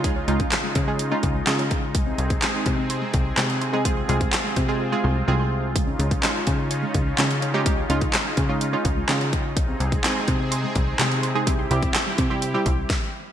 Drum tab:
HH |x-xxx-x-x-x-xxx-|x-xxx-x-x-x-xxx-|x-xxx-x---------|x-xxx-x-x-x-xxx-|
CP |----x-------x---|----x-------x---|----x-----------|----x-------x---|
SD |----o-------o---|----o-------o---|----o-----------|----o-------o---|
BD |o--o--o---o---o-|o--o--o---o-----|o--o--o---------|o--o--o---o-----|

HH |x-xxx-x-x-x-xxx-|x-xxx-x-x-x-xxx-|x-xxx-x-x-x-----|
CP |----x-------x---|----x-------x---|----x-----------|
SD |----o-------o---|----o-------o---|----o-------o---|
BD |o--o--o---o---o-|o--o--o---o-----|o--o--o---o-o---|